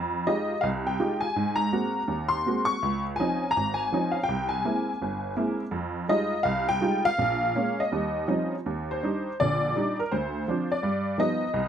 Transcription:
Already playing: F2
0.26 G#3 D#4 F4 G4 D#5
0.61 C2 F5
0.87 G5
1.00 G#3 D#4 F4 G4
1.21 G#5
1.36 G#2
1.56 A#5
1.73 G#3 A#3 C4 F#4
2.08 D#2
2.29 C6
2.46 G#3 A#3 C4 F#4
2.65 C#6
2.82 C#2
3.16 F3 C4 C#4 D#4 G#5
3.51 A#5
3.56 G#1
3.74 G#5
3.92 F3 C4 C#4 D#4
4.12 F5
4.24 G5
4.29 C2
4.49 G#5
4.64 G#3 A#3 C4 E4
5.02 G1
5.36 G#3 A#3 C4 E4
5.71 F2
6.09 G3 G#3 D#4 F4 D#5
6.43 C2 F5
6.69 G5
6.81 G3 G#3 D#4 F4
7.05 F5
7.19 A#1
7.55 G#3 A#3 C#4
7.80 D#5
7.92 D#2 G3
8.28 F3 G3 C4 C#4 D#4
8.66 D#2
8.91 C5
9.03 G3 D4 D#4
9.40 A#1 D3 D5
9.76 G3 D4 D#4
9.99 A#4
10.12 D2 C5
10.48 F3 C4 D4
10.72 D5
10.83 G2
11.18 F3 G3 B3 D#4 D#5
11.54 C2

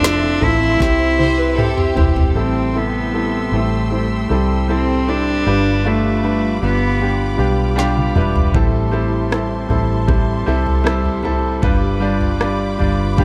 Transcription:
Already playing: F1 F3 A3 C4 D4 E4 A4 E5 C6 E6
0.03 F3 A3 C4 E4 A4, snare
0.22 C4
0.41 A1 F3 A3 C4 E4 A4, floor tom
0.61 C4
0.79 C2 C3 C4 E4 G4 C5 E5, kick, snare
1.00 C4
1.18 C4 E4 G4 C5, high tom
1.38 B4 C5
1.57 C4 E4 G4 A4, mid tom
1.76 C4 G4, mid tom
1.95 E1 C4 E4 G4 C5, floor tom
2.16 C4, floor tom
2.34 A1 A2 G3 C4 E4 A4 G5 C6 E6
2.38 C4
2.74 C3 G3 B3 E4 A4
3.13 C3 G3 E4 A4
3.52 A1 G3 A3 C4 E4 A4
3.90 G3 A3 C4 E4 C5
4.29 C2 G3 C4 E4 A4
4.68 G3 C4 E4 A4
5.07 G3 C4 D4 E4 G4 A4
5.46 G1 G2 G3 D4 F4 G4 B4 B5 D6
5.85 G3 A3 D4 F4 A4
6.23 G3 D4 F4 B4
6.62 G1 G3 B3 D4 F4 B4
7.00 G3 D4 F4 G4
7.37 B1 G3 D4 F4 G4 B4
7.76 G3 D4 F4 G4 G5, snare
7.97 F5, high tom
8.15 E1 G3 D4 F4 B4 E5, mid tom
8.36 floor tom
8.54 A1 A2 G3 C4 E4 A4 E5 A5 C6, kick, floor tom
8.91 G3 C4 E4 A4
9.31 G3 C4 E4 A4, cross-stick
9.69 A1 G3 C4 E4 A4, floor tom
10.08 G3 C4 E4 A4, kick, floor tom
10.46 C2 G3 C4 E4 A4
10.66 floor tom
10.84 G3 C4 E4 A4, cross-stick
11.05 floor tom
11.23 G3 C4 E4 A4, floor tom
11.62 G1 G2 G3 D4 F4 B4 B5 D6, kick, floor tom
12.00 G3 D4 F4 D5
12.21 floor tom
12.40 G3 D4 F4 D5, cross-stick
12.79 G1 G3 D4 F4 D5, floor tom
13.17 G3 D4 F4 G4, kick, floor tom

